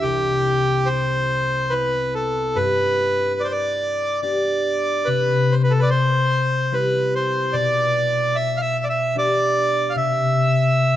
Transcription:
Already playing: D4 E4
0.02 C2 G4
0.86 C5
1.70 B3 C4 E4 B4
2.15 A4
2.55 G2 B4
3.40 D5
3.44 C5
3.52 D5
4.22 B3 D4 G4 D5
5.05 C3 B4
5.52 C5
5.64 B4
5.70 A4
5.80 B4 D5
5.90 C5
6.72 G3 C4 E4 B4
7.15 C5
7.53 B2 D5
8.35 E5
8.57 F5
8.61 E5
8.84 D5
8.89 E5
9.15 B3 D4 G4 D5
9.90 F5
9.95 C3 E5

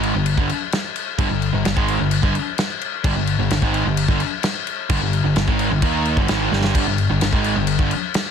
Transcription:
Already playing: G#1 G#2 D#3 G#3
0.03 crash
0.14 G1 G2 D3
0.26 crash
0.38 G1 G2 D3, kick
0.49 crash
0.72 snare, crash
0.96 crash
1.18 G1 G2 D3, kick, crash
1.30 G1 G2 D3
1.42 crash
1.54 G1 G2 D3
1.65 G1 G2 D3, snare, crash
1.76 G#1 G#2 D#3 G#3, kick
1.88 crash
2.00 G1 G2 D3
2.11 crash
2.23 G1 G2 D3, kick
2.35 crash
2.58 snare, crash
2.81 crash
3.04 G1 G2 D3, kick, crash
3.15 G1 G2 D3
3.27 crash
3.38 G1 G2 D3
3.50 G1 G2 D3, snare, crash
3.62 G#1 G#2 D#3 G#3, kick
3.74 crash
3.86 G1 G2 D3
3.97 crash
4.08 G1 G2 D3, kick
4.20 crash
4.43 snare, crash
4.67 crash
4.90 G1 G2 D3, kick, crash
5.01 G1 G2 D3
5.13 crash
5.24 G1 G2 D3
5.36 G1 G2 D3, snare, crash
5.48 G#1 G#2 D#3 G#3, kick
5.59 crash
5.71 G1 G2 D3
5.82 D#2 D#3 A#3 D#4, kick, crash
6.05 crash
6.17 G1 G2 D3, kick
6.28 G#1 G#2 D#3 G#3, snare, crash
6.51 G1 G2 D3 G3, snare
6.64 snare
6.75 G1 G2 D3, kick, crash
6.86 G1 G2 D3
6.98 crash
7.10 G1 G2 D3
7.21 G1 G2 D3, snare, crash
7.33 G#1 G#2 D#3 G#3, kick
7.44 crash
7.56 G1 G2 D3
7.67 crash
7.79 G1 G2 D3, kick
7.91 crash
8.14 snare, crash

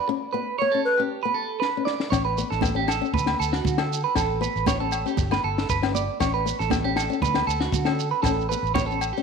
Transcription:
0.08 C#4, muted clean electric guitar stroke
0.33 B3 B4
0.58 B3 C#5
0.72 C#4 A4
0.85 B4
0.98 C#4 G4
1.23 B3 B4
1.34 A4
1.60 B4, snare
1.77 C#4
1.85 D5, snare
2.00 snare
2.10 A1 C#4 C#5, kick, snare, muted conga, low agogo, shekere
2.25 B4
2.38 B3, shekere
2.50 A1 A4, snare, shekere
2.61 B3, kick, snare, high conga, low agogo, shekere
2.75 C#4 G4
2.88 A4, snare, muted conga, low agogo, shekere
3.02 C#4, shekere
3.14 D2 B4, kick, muted conga, high conga
3.18 shekere
3.26 B3, snare, low agogo
3.39 D2 A4, muted conga, shekere
3.53 F#4, snare, shekere
3.64 D3, kick, snare, high conga, shekere
3.78 A4, muted nylon-string guitar stroke, snare, low agogo
3.93 shekere
4.04 B4
4.15 A1 A4, muted nylon-string guitar stroke, kick, snare, muted conga, low agogo, shekere
4.41 B3 B4, shekere
4.56 A1, shekere
4.66 B3 C#5, kick, snare, high conga, low agogo, shekere
4.80 C#4 A4
4.92 muted conga, low agogo, shekere
5.06 C#4 G4, shekere
5.17 G1, kick, snare, muted conga, high conga, low conga, shekere
5.31 B3 B4, snare, low agogo, shekere
5.44 G1 A4
5.58 snare, shekere
5.69 G1 B4, kick, snare, shekere
5.82 C#4, snare, low agogo
5.95 D5, high conga, shekere
6.20 A1 C#4 C#5, kick, snare, muted conga, low agogo, shekere
6.34 B4
6.46 B3, shekere
6.59 A1 A4, snare, shekere
6.70 B3, kick, snare, high conga, low agogo, shekere
6.84 C#4 G4
6.96 A4, snare, muted conga, low agogo, shekere
7.10 C#4, shekere
7.22 D2 B4, kick, snare, muted conga, high conga, shekere
7.34 B3, snare, low agogo, shekere
7.47 D2 A4, muted conga, shekere
7.61 F#4, snare, shekere
7.71 D3, kick, snare, high conga, shekere
7.85 C#4 A4, snare, low agogo
8.00 shekere
8.11 B4
8.23 A1 C#4 A4, kick, snare, muted conga, low agogo, shekere
8.41 shekere
8.49 B3 B4, shekere
8.63 A1, shekere
8.74 B3 C#5, kick, snare, high conga, low agogo, shekere
8.86 A4
8.91 C#4, shekere
9.01 muted conga, low agogo, shekere
9.13 G4, shekere
9.18 C#4

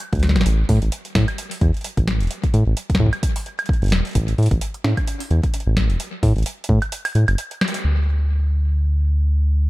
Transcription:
0.00 closed hi-hat
0.13 D2, kick, closed hi-hat
0.15 closed hi-hat
0.19 snare, closed hi-hat
0.23 closed hi-hat
0.27 snare, closed hi-hat
0.31 closed hi-hat
0.36 A1, snare, closed hi-hat
0.41 snare
0.46 A1, closed hi-hat
0.69 A2, kick, open hi-hat
0.82 A1, closed hi-hat
0.92 closed hi-hat
1.05 closed hi-hat
1.15 A2, kick, snare, closed hi-hat
1.28 closed hi-hat, high woodblock
1.38 closed hi-hat
1.51 open hi-hat
1.61 E2, kick, closed hi-hat
1.74 closed hi-hat
1.77 closed hi-hat
1.81 closed hi-hat
1.84 closed hi-hat
1.97 A1, kick, closed hi-hat
2.08 snare, closed hi-hat
2.20 E1, closed hi-hat
2.23 closed hi-hat
2.27 closed hi-hat
2.31 closed hi-hat
2.44 kick, closed hi-hat
2.54 A2, closed hi-hat
2.67 A1
2.77 closed hi-hat
2.90 kick, closed hi-hat
2.95 kick, snare
3.00 A2, kick
3.06 kick
3.13 closed hi-hat, high woodblock
3.23 kick, closed hi-hat
3.36 open hi-hat
3.46 closed hi-hat
3.59 closed hi-hat, high woodblock
3.66 kick, closed hi-hat
3.73 closed hi-hat
3.82 G1, closed hi-hat
3.84 closed hi-hat
3.86 closed hi-hat
3.88 closed hi-hat
3.90 snare, closed hi-hat
3.92 E1, closed hi-hat
4.05 closed hi-hat
4.07 closed hi-hat
4.09 closed hi-hat
4.11 closed hi-hat
4.13 A1, kick, closed hi-hat
4.15 closed hi-hat
4.28 closed hi-hat
4.38 A2, open hi-hat
4.43 open hi-hat
4.46 open hi-hat
4.51 A1, kick, closed hi-hat
4.61 closed hi-hat
4.74 closed hi-hat
4.84 A2, snare
4.97 kick, closed hi-hat, high woodblock
5.07 closed hi-hat
5.20 open hi-hat
5.31 E2, closed hi-hat
5.43 kick, closed hi-hat
5.54 closed hi-hat
5.60 closed hi-hat
5.67 A1
5.77 kick, snare
5.90 E1, closed hi-hat
6.00 closed hi-hat
6.23 A2, kick, open hi-hat
6.36 A1, closed hi-hat
6.38 closed hi-hat
6.43 closed hi-hat
6.46 closed hi-hat
6.64 closed hi-hat
6.69 A2, kick
6.82 closed hi-hat, high woodblock
6.92 closed hi-hat
7.05 open hi-hat, high woodblock
7.15 A2, closed hi-hat
7.28 G1, closed hi-hat, high woodblock
7.38 closed hi-hat
7.51 closed hi-hat
7.61 snare, high woodblock
7.68 closed hi-hat
7.74 closed hi-hat
7.84 D2

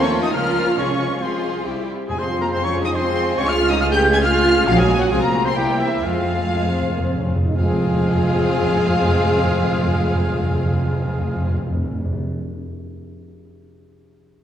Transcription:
Already playing: D#2 F3 A3 C4 F4 A4
0.01 C#4 C#5 C#6
0.23 D#4 D#5 D#6
0.33 C#2 F3 A#3 C#4 F4 A#4 F5 F6
0.77 C2 C3 F3 G#3 C#4 F4 G#4 C#5 C#6
1.20 F3 G#3 C4 F4 G#4 C5 C6
1.64 C2 G3 C4 E4 G4
2.09 F2 F3 G#3 C4 F4 G#4 G#5
2.19 C4 C5 C6
2.41 A#3 A#4 A#5
2.52 C4 C5 C6
2.63 C#4 C#5 C#6
2.84 D#4 D#5 D#6
2.94 C4 C5 C6
3.38 C#2 G#3 C#4 G#4 C#5 C#6
3.48 F4 F5 F6
3.70 D#4 D#5 D#6
3.80 F4 F5 F6
3.91 G4 G5 G6
4.12 G#4 G#5 G#6
4.23 F4 F5 F6
4.67 A#1 F3 A#3 C#4 F4 F#4 F5
4.77 G#3 G#4 G#5
5.00 F#3 F#4 F#5
5.11 C2 G#3 C4 F4 G#4 G#5
5.22 A#3 A#4 A#5
5.45 C4 C5 C6
5.56 G3 A#3 E4 G4 G5
5.80 E3 E4 E5
6.03 F2 F3 G#3 F4 G#4 F5
6.13 F2
6.22 F2
6.30 F2
6.38 F2
6.47 F2
6.54 F2 G#3
6.64 F2 C4
6.81 F2
6.90 F2 A#3
7.00 F2
7.04 F2 C4
7.17 F2 C#4
7.26 F2
7.35 F2
7.43 F2 D#4
7.57 F2 F3 G#3 C4 F4 G#4 F5
7.64 F2
7.72 F2
7.79 F2
7.86 F2
7.94 F2
8.01 F2
8.08 F2
8.15 F2
8.22 F2
8.30 F2
8.37 F2
8.45 F2
8.52 F2
8.58 F2
8.65 F2
8.73 F2
8.79 F2
8.87 F2
8.94 F2
9.01 F2
9.08 F2
9.15 F2
9.23 F2
9.29 F2
9.37 F2
9.43 F2
9.51 F2
9.57 F2
9.65 F2
9.71 F2
9.78 F2
9.85 F2
9.92 F2
9.99 F2
10.06 F2
10.13 F2
10.20 F2
10.27 F2
10.34 F2
10.40 F2
10.48 F2
10.55 F2
10.63 F2
10.70 F2
10.78 F2
10.85 F2
10.92 F2
10.99 F2
11.07 F2
11.14 F2
11.21 F2
11.28 F2
11.36 F2
11.43 F2
11.50 F2
11.57 F2
11.64 F2
11.71 F2
11.78 F2
11.85 F2
11.92 F2
11.99 F2
12.05 F2
12.13 F2

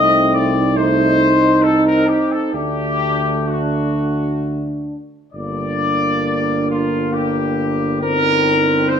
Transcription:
Already playing: C2 A3 C4 D#4 D#5
0.34 D5
0.75 A3 D#4 C5
1.62 C4 A4
1.85 A#4
2.07 G4
2.31 A4
2.53 D2 A3 D4 G4
3.46 F#4
5.33 G1 G3 A#3 D4 D5
6.69 F4
7.13 G4
8.01 C4 D#4 A#4
8.88 C5

